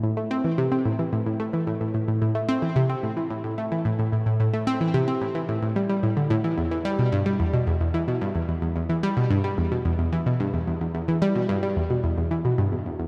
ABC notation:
X:1
M:4/4
L:1/16
Q:1/4=110
K:Am
V:1 name="Synth arpeggio sound" clef=bass
A,, A, C E, C, C A,, E, A,, A,, A, E, A,, A,, A,, A,, | A,, A, C E, C, C A,, E, A,, A,, A, E, A,, A,, A,, A,, | A,, A, C E, C, C A,, E, A,, A,, G, G, A,, D, A,, E, | E,, E, G, B,, G,, G, E,, B,, E,, E,, E, B,, G,, E,, E,, E,, |
E,, E, G, B,, G,, G, E,, B,, E,, E,, E, B,, G,, E,, E,, E,, | E,, E, G, B,, G,, G, E,, B,, E,, E,, E, B,, G,, E,, E,, E,, |]